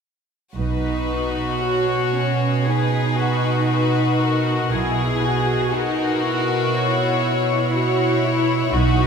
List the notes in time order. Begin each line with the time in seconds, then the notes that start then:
0.56 B1 B2 D#4 F#4 B4
1.63 F#4 C#5
2.16 C#4
2.65 D#4 G#4 B4
3.17 F#4
3.69 F#4 B4
4.21 A#4
4.71 B1 B2 E4 G#4
5.23 F#4
5.72 D#4 F#4 A#4
6.24 E4
6.74 C#5
7.73 E4 F#4 C#5
8.24 E4
8.72 B1 B2 D#4 F#4 B4